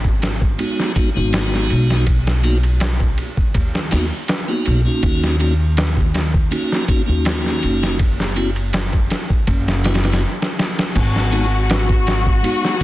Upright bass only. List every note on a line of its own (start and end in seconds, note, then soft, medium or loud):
0.00 0.56 G#1 medium
1.16 1.67 G#1 medium
1.71 3.15 B1 medium
3.55 3.88 D#2 medium
3.93 4.10 D#2 loud
4.67 4.84 B1 loud
5.03 6.48 D#2 loud
7.09 7.60 D#2 medium
7.64 9.08 F#1 medium
9.48 10.22 F#1 loud
10.96 12.41 G#1 loud